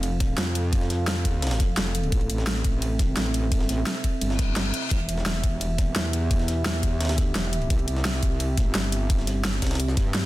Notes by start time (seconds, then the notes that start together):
Already playing: F1 C4 A4 F5
0.03 closed hi-hat, ride
0.20 kick, snare, closed hi-hat, ride
0.38 F2, snare, closed hi-hat, open hi-hat
0.55 closed hi-hat, ride
0.73 kick, closed hi-hat, ride
0.81 snare
0.90 snare, closed hi-hat, ride
1.08 snare, closed hi-hat, ride
1.25 kick, closed hi-hat, ride
1.42 snare, closed hi-hat, ride
1.47 snare, ride
1.51 snare, ride
1.60 kick, snare, closed hi-hat, ride
1.77 F1, snare, closed hi-hat, ride
1.95 closed hi-hat, ride
2.03 ride
2.12 A1 C4 E5, kick, closed hi-hat, ride
2.21 ride
2.30 A1, closed hi-hat, ride
2.38 snare
2.47 snare, closed hi-hat, ride
2.56 snare
2.64 A1, kick, closed hi-hat, ride
2.82 closed hi-hat, ride
2.99 kick, snare, closed hi-hat, ride
3.17 A1, snare, closed hi-hat, open hi-hat
3.34 closed hi-hat, ride
3.52 kick, closed hi-hat, ride
3.60 snare
3.69 A1, snare, closed hi-hat, ride
3.87 snare, closed hi-hat, ride
4.04 kick, closed hi-hat, ride
4.21 G1, closed hi-hat, ride, reverse cymbal
4.30 snare
4.39 kick, snare, closed hi-hat, ride
4.56 snare, closed hi-hat, ride
4.74 closed hi-hat, ride
4.83 ride
4.91 E1 B3 G4, kick, closed hi-hat, ride
5.00 ride
5.09 E1, closed hi-hat, ride
5.17 snare
5.26 snare, closed hi-hat, ride
5.35 snare
5.44 E1, kick, closed hi-hat, ride
5.61 closed hi-hat, ride
5.78 kick, snare, closed hi-hat, ride
5.96 E2, snare, closed hi-hat, open hi-hat
6.13 closed hi-hat, ride
6.31 kick, closed hi-hat, ride
6.40 snare
6.48 snare, closed hi-hat, ride
6.66 snare, closed hi-hat, ride
6.83 kick, closed hi-hat, ride
6.93 D#2
7.01 snare, closed hi-hat, ride
7.05 snare, ride
7.09 snare, ride
7.18 D2, kick, snare, closed hi-hat, ride
7.35 E1, snare, closed hi-hat, ride
7.53 closed hi-hat, ride
7.62 ride
7.70 C2 C4, kick, closed hi-hat, ride
7.79 ride
7.88 C2, closed hi-hat, ride
7.96 snare
8.05 snare, closed hi-hat, ride
8.14 snare
8.23 C2, kick, closed hi-hat, ride
8.40 closed hi-hat, ride
8.57 kick, snare, closed hi-hat, ride
8.75 G1, snare, closed hi-hat, open hi-hat
8.92 closed hi-hat, ride
9.10 kick, closed hi-hat, ride
9.19 snare
9.27 snare, closed hi-hat, ride
9.45 snare, closed hi-hat, ride
9.62 C2, kick, snare, closed hi-hat, ride
9.67 snare, ride
9.71 snare, ride
9.75 snare, ride
9.80 closed hi-hat, ride
9.88 snare
9.97 G2, kick, snare, closed hi-hat, ride
10.14 snare, closed hi-hat, ride